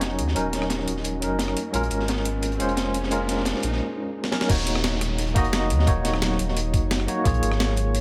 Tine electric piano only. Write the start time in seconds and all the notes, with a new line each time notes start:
Already playing: F#3 C#4 D#4 A#4 C#5
0.35 F#3 C#4 D#4 A#4
1.20 F#3 C#4 D#4 A#4
1.72 G#3 C#4 F4 A#4
2.58 G#3 C#4 F4 C5
3.11 G#3 C#4 F4 A#4
4.31 F#3 C#4 D#4 A#4
4.48 A#3 D#4 F#4 C#5
5.34 A#3 D#4 F#4 D#5
5.87 A#3 D#4 F#4 C#5
7.07 A#3 D#4 F#4 C#5
7.24 A#3 F4 G#4 C#5